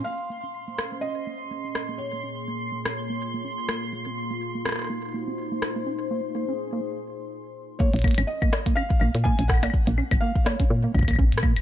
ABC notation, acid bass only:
X:1
M:4/4
L:1/16
Q:"Swing 16ths" 1/4=124
K:Bbm
V:1 name="Acid bass"
B, z B, D z B, z B, D z B, z B, D z B, | z B, D z B, z B, D z B, z B, D z B, z | B, C z B, z B, C z B, z B, C z B, z B, | D z B, z B, D z B, z8 |
B, z B, D z B, z B, D z B, z B, D z B, | z B, D z B, z B, D z B, z B, D z B, z |]